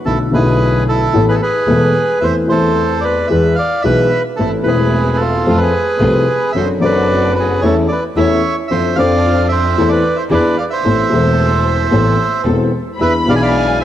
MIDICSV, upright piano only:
0, 0, Header, 1, 2, 480
1, 0, Start_track
1, 0, Key_signature, 0, "minor"
1, 0, Tempo, 539084
1, 53, Time_signature, 4, 2, 24, 8
1, 12324, End_track
2, 0, Start_track
2, 0, Title_t, "Upright piano"
2, 0, Program_c, 0, 0
2, 47, Note_on_c, 0, 50, 39
2, 50, Note_on_c, 0, 47, 46
2, 51, Note_on_c, 0, 59, 35
2, 52, Note_on_c, 0, 35, 46
2, 53, Note_on_c, 0, 64, 42
2, 54, Note_on_c, 0, 57, 36
2, 251, Note_off_c, 0, 50, 0
2, 252, Note_off_c, 0, 47, 0
2, 253, Note_off_c, 0, 35, 0
2, 253, Note_off_c, 0, 59, 0
2, 254, Note_off_c, 0, 57, 0
2, 254, Note_off_c, 0, 64, 0
2, 277, Note_on_c, 0, 50, 59
2, 288, Note_on_c, 0, 57, 55
2, 291, Note_on_c, 0, 47, 70
2, 293, Note_on_c, 0, 35, 71
2, 297, Note_on_c, 0, 59, 55
2, 314, Note_on_c, 0, 64, 66
2, 966, Note_off_c, 0, 50, 0
2, 972, Note_off_c, 0, 57, 0
2, 973, Note_off_c, 0, 47, 0
2, 974, Note_off_c, 0, 35, 0
2, 976, Note_off_c, 0, 59, 0
2, 985, Note_off_c, 0, 64, 0
2, 1008, Note_on_c, 0, 52, 58
2, 1012, Note_on_c, 0, 45, 68
2, 1013, Note_on_c, 0, 33, 67
2, 1013, Note_on_c, 0, 57, 55
2, 1015, Note_on_c, 0, 59, 56
2, 1019, Note_on_c, 0, 69, 68
2, 1210, Note_off_c, 0, 52, 0
2, 1213, Note_off_c, 0, 33, 0
2, 1213, Note_off_c, 0, 45, 0
2, 1213, Note_off_c, 0, 57, 0
2, 1214, Note_off_c, 0, 59, 0
2, 1216, Note_off_c, 0, 69, 0
2, 1488, Note_on_c, 0, 40, 73
2, 1490, Note_on_c, 0, 28, 70
2, 1492, Note_on_c, 0, 52, 63
2, 1493, Note_on_c, 0, 57, 56
2, 1494, Note_on_c, 0, 59, 53
2, 1497, Note_on_c, 0, 69, 67
2, 1690, Note_off_c, 0, 40, 0
2, 1691, Note_off_c, 0, 28, 0
2, 1692, Note_off_c, 0, 52, 0
2, 1692, Note_off_c, 0, 57, 0
2, 1693, Note_off_c, 0, 59, 0
2, 1694, Note_off_c, 0, 69, 0
2, 1974, Note_on_c, 0, 52, 47
2, 1976, Note_on_c, 0, 69, 42
2, 1977, Note_on_c, 0, 40, 43
2, 1978, Note_on_c, 0, 57, 36
2, 1978, Note_on_c, 0, 60, 39
2, 2174, Note_off_c, 0, 69, 0
2, 2175, Note_off_c, 0, 40, 0
2, 2175, Note_off_c, 0, 57, 0
2, 2175, Note_off_c, 0, 60, 0
2, 2176, Note_off_c, 0, 52, 0
2, 2199, Note_on_c, 0, 52, 66
2, 2210, Note_on_c, 0, 57, 56
2, 2217, Note_on_c, 0, 40, 70
2, 2224, Note_on_c, 0, 60, 54
2, 2234, Note_on_c, 0, 69, 63
2, 2896, Note_off_c, 0, 57, 0
2, 2898, Note_off_c, 0, 52, 0
2, 2900, Note_off_c, 0, 40, 0
2, 2903, Note_off_c, 0, 60, 0
2, 2908, Note_off_c, 0, 69, 0
2, 2934, Note_on_c, 0, 52, 63
2, 2935, Note_on_c, 0, 56, 49
2, 2938, Note_on_c, 0, 59, 56
2, 2939, Note_on_c, 0, 68, 68
2, 2941, Note_on_c, 0, 40, 63
2, 3136, Note_off_c, 0, 56, 0
2, 3137, Note_off_c, 0, 52, 0
2, 3137, Note_off_c, 0, 59, 0
2, 3138, Note_off_c, 0, 68, 0
2, 3139, Note_off_c, 0, 40, 0
2, 3417, Note_on_c, 0, 52, 55
2, 3421, Note_on_c, 0, 35, 64
2, 3421, Note_on_c, 0, 68, 62
2, 3422, Note_on_c, 0, 47, 68
2, 3423, Note_on_c, 0, 56, 53
2, 3425, Note_on_c, 0, 59, 51
2, 3620, Note_off_c, 0, 52, 0
2, 3622, Note_off_c, 0, 35, 0
2, 3622, Note_off_c, 0, 47, 0
2, 3622, Note_off_c, 0, 68, 0
2, 3623, Note_off_c, 0, 56, 0
2, 3624, Note_off_c, 0, 59, 0
2, 3905, Note_on_c, 0, 57, 35
2, 3906, Note_on_c, 0, 52, 38
2, 3908, Note_on_c, 0, 33, 42
2, 3909, Note_on_c, 0, 45, 43
2, 3909, Note_on_c, 0, 60, 34
2, 3911, Note_on_c, 0, 69, 41
2, 4105, Note_off_c, 0, 57, 0
2, 4106, Note_off_c, 0, 52, 0
2, 4107, Note_off_c, 0, 33, 0
2, 4107, Note_off_c, 0, 45, 0
2, 4107, Note_off_c, 0, 60, 0
2, 4108, Note_off_c, 0, 69, 0
2, 4122, Note_on_c, 0, 52, 58
2, 4134, Note_on_c, 0, 57, 51
2, 4143, Note_on_c, 0, 40, 66
2, 4144, Note_on_c, 0, 28, 66
2, 4149, Note_on_c, 0, 60, 52
2, 4163, Note_on_c, 0, 64, 61
2, 4820, Note_off_c, 0, 52, 0
2, 4826, Note_off_c, 0, 57, 0
2, 4831, Note_off_c, 0, 28, 0
2, 4831, Note_off_c, 0, 40, 0
2, 4834, Note_off_c, 0, 60, 0
2, 4841, Note_off_c, 0, 64, 0
2, 4867, Note_on_c, 0, 41, 64
2, 4867, Note_on_c, 0, 60, 53
2, 4868, Note_on_c, 0, 53, 66
2, 4871, Note_on_c, 0, 57, 54
2, 4871, Note_on_c, 0, 69, 65
2, 5069, Note_off_c, 0, 41, 0
2, 5069, Note_off_c, 0, 60, 0
2, 5071, Note_off_c, 0, 53, 0
2, 5071, Note_off_c, 0, 57, 0
2, 5071, Note_off_c, 0, 69, 0
2, 5342, Note_on_c, 0, 60, 51
2, 5345, Note_on_c, 0, 53, 55
2, 5345, Note_on_c, 0, 57, 52
2, 5349, Note_on_c, 0, 36, 63
2, 5349, Note_on_c, 0, 48, 65
2, 5349, Note_on_c, 0, 69, 68
2, 5547, Note_off_c, 0, 60, 0
2, 5549, Note_off_c, 0, 53, 0
2, 5549, Note_off_c, 0, 57, 0
2, 5551, Note_off_c, 0, 36, 0
2, 5551, Note_off_c, 0, 48, 0
2, 5551, Note_off_c, 0, 69, 0
2, 5829, Note_on_c, 0, 54, 47
2, 5833, Note_on_c, 0, 42, 46
2, 5833, Note_on_c, 0, 60, 35
2, 5834, Note_on_c, 0, 62, 38
2, 5837, Note_on_c, 0, 69, 43
2, 6032, Note_off_c, 0, 54, 0
2, 6033, Note_off_c, 0, 42, 0
2, 6033, Note_off_c, 0, 60, 0
2, 6034, Note_off_c, 0, 62, 0
2, 6035, Note_off_c, 0, 69, 0
2, 6054, Note_on_c, 0, 54, 70
2, 6063, Note_on_c, 0, 60, 59
2, 6072, Note_on_c, 0, 42, 71
2, 6078, Note_on_c, 0, 62, 55
2, 6088, Note_on_c, 0, 69, 67
2, 6750, Note_off_c, 0, 60, 0
2, 6754, Note_off_c, 0, 54, 0
2, 6755, Note_off_c, 0, 42, 0
2, 6758, Note_off_c, 0, 62, 0
2, 6763, Note_off_c, 0, 69, 0
2, 6793, Note_on_c, 0, 52, 72
2, 6795, Note_on_c, 0, 61, 56
2, 6797, Note_on_c, 0, 57, 58
2, 6797, Note_on_c, 0, 69, 72
2, 6799, Note_on_c, 0, 40, 69
2, 6993, Note_off_c, 0, 52, 0
2, 6993, Note_off_c, 0, 57, 0
2, 6993, Note_off_c, 0, 61, 0
2, 6994, Note_off_c, 0, 40, 0
2, 6994, Note_off_c, 0, 69, 0
2, 7271, Note_on_c, 0, 40, 72
2, 7272, Note_on_c, 0, 52, 67
2, 7273, Note_on_c, 0, 61, 58
2, 7273, Note_on_c, 0, 69, 66
2, 7274, Note_on_c, 0, 57, 60
2, 7470, Note_off_c, 0, 40, 0
2, 7471, Note_off_c, 0, 52, 0
2, 7471, Note_off_c, 0, 57, 0
2, 7471, Note_off_c, 0, 61, 0
2, 7471, Note_off_c, 0, 69, 0
2, 7748, Note_on_c, 0, 53, 46
2, 7751, Note_on_c, 0, 41, 47
2, 7751, Note_on_c, 0, 60, 39
2, 7752, Note_on_c, 0, 62, 37
2, 7754, Note_on_c, 0, 69, 46
2, 7949, Note_off_c, 0, 41, 0
2, 7949, Note_off_c, 0, 53, 0
2, 7949, Note_off_c, 0, 60, 0
2, 7949, Note_off_c, 0, 62, 0
2, 7950, Note_off_c, 0, 69, 0
2, 7975, Note_on_c, 0, 53, 72
2, 7989, Note_on_c, 0, 60, 56
2, 7996, Note_on_c, 0, 41, 69
2, 7997, Note_on_c, 0, 62, 59
2, 8013, Note_on_c, 0, 69, 71
2, 8665, Note_off_c, 0, 53, 0
2, 8665, Note_off_c, 0, 60, 0
2, 8669, Note_off_c, 0, 41, 0
2, 8670, Note_off_c, 0, 62, 0
2, 8677, Note_off_c, 0, 69, 0
2, 8708, Note_on_c, 0, 40, 71
2, 8708, Note_on_c, 0, 52, 70
2, 8708, Note_on_c, 0, 57, 51
2, 8710, Note_on_c, 0, 60, 52
2, 8712, Note_on_c, 0, 69, 66
2, 8904, Note_off_c, 0, 40, 0
2, 8904, Note_off_c, 0, 52, 0
2, 8904, Note_off_c, 0, 57, 0
2, 8905, Note_off_c, 0, 60, 0
2, 8906, Note_off_c, 0, 69, 0
2, 9176, Note_on_c, 0, 52, 71
2, 9180, Note_on_c, 0, 59, 55
2, 9181, Note_on_c, 0, 40, 69
2, 9181, Note_on_c, 0, 62, 54
2, 9181, Note_on_c, 0, 68, 67
2, 9378, Note_off_c, 0, 52, 0
2, 9379, Note_off_c, 0, 59, 0
2, 9379, Note_off_c, 0, 62, 0
2, 9380, Note_off_c, 0, 40, 0
2, 9380, Note_off_c, 0, 68, 0
2, 9655, Note_on_c, 0, 52, 42
2, 9660, Note_on_c, 0, 45, 48
2, 9660, Note_on_c, 0, 60, 39
2, 9660, Note_on_c, 0, 69, 44
2, 9661, Note_on_c, 0, 59, 36
2, 9664, Note_on_c, 0, 33, 48
2, 9856, Note_off_c, 0, 52, 0
2, 9858, Note_off_c, 0, 69, 0
2, 9859, Note_off_c, 0, 45, 0
2, 9859, Note_off_c, 0, 59, 0
2, 9859, Note_off_c, 0, 60, 0
2, 9861, Note_off_c, 0, 33, 0
2, 9881, Note_on_c, 0, 52, 64
2, 9894, Note_on_c, 0, 57, 52
2, 9899, Note_on_c, 0, 28, 68
2, 9899, Note_on_c, 0, 40, 68
2, 9906, Note_on_c, 0, 60, 52
2, 9914, Note_on_c, 0, 69, 65
2, 10568, Note_off_c, 0, 52, 0
2, 10574, Note_off_c, 0, 57, 0
2, 10576, Note_off_c, 0, 40, 0
2, 10577, Note_off_c, 0, 28, 0
2, 10580, Note_off_c, 0, 60, 0
2, 10584, Note_off_c, 0, 69, 0
2, 10606, Note_on_c, 0, 52, 59
2, 10611, Note_on_c, 0, 60, 53
2, 10612, Note_on_c, 0, 45, 65
2, 10612, Note_on_c, 0, 59, 56
2, 10613, Note_on_c, 0, 33, 70
2, 10613, Note_on_c, 0, 69, 63
2, 10809, Note_off_c, 0, 52, 0
2, 10811, Note_off_c, 0, 60, 0
2, 10812, Note_off_c, 0, 33, 0
2, 10812, Note_off_c, 0, 45, 0
2, 10812, Note_off_c, 0, 59, 0
2, 10813, Note_off_c, 0, 69, 0
2, 11093, Note_on_c, 0, 28, 66
2, 11093, Note_on_c, 0, 52, 52
2, 11094, Note_on_c, 0, 40, 70
2, 11095, Note_on_c, 0, 59, 51
2, 11097, Note_on_c, 0, 69, 61
2, 11098, Note_on_c, 0, 60, 52
2, 11295, Note_off_c, 0, 28, 0
2, 11295, Note_off_c, 0, 40, 0
2, 11295, Note_off_c, 0, 52, 0
2, 11296, Note_off_c, 0, 59, 0
2, 11296, Note_off_c, 0, 69, 0
2, 11297, Note_off_c, 0, 60, 0
2, 11578, Note_on_c, 0, 59, 36
2, 11580, Note_on_c, 0, 68, 44
2, 11581, Note_on_c, 0, 52, 44
2, 11581, Note_on_c, 0, 62, 34
2, 11582, Note_on_c, 0, 40, 45
2, 11777, Note_off_c, 0, 59, 0
2, 11778, Note_off_c, 0, 68, 0
2, 11779, Note_off_c, 0, 40, 0
2, 11779, Note_off_c, 0, 62, 0
2, 11780, Note_off_c, 0, 52, 0
2, 11801, Note_on_c, 0, 52, 56
2, 11813, Note_on_c, 0, 59, 55
2, 11819, Note_on_c, 0, 47, 72
2, 11823, Note_on_c, 0, 35, 70
2, 11827, Note_on_c, 0, 62, 53
2, 11840, Note_on_c, 0, 68, 64
2, 12324, Note_off_c, 0, 35, 0
2, 12324, Note_off_c, 0, 47, 0
2, 12324, Note_off_c, 0, 52, 0
2, 12324, Note_off_c, 0, 59, 0
2, 12324, Note_off_c, 0, 62, 0
2, 12324, Note_off_c, 0, 68, 0
2, 12324, End_track
0, 0, End_of_file